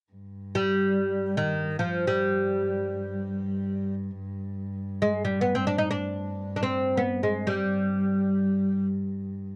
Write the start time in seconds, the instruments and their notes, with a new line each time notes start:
0.13 cello G2
0.55 oud G3
1.37 oud D#3
1.79 oud F3
2.07 oud G3
5.02 oud G#3
5.25 oud G3
5.41 oud B3
5.55 oud C4
5.67 oud D4
5.78 oud D#4
5.91 oud D4
6.56 oud D4
6.63 oud C4
6.97 oud B3
7.23 oud G#3
7.47 oud G3